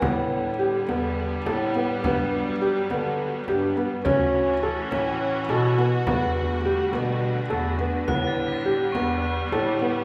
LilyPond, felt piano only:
\new Staff \with { instrumentName = "Felt piano" } { \time 7/8 \key a \mixolydian \tempo 4 = 104 b4 g'8 b4 a'8 b8 | b4 g'8 b4 g'8 b8 | cis'4 a'8 cis'4 a'8 b8 | b4 g'8 b4 a'8 b8 |
b4 g'8 b4 a'8 b8 | }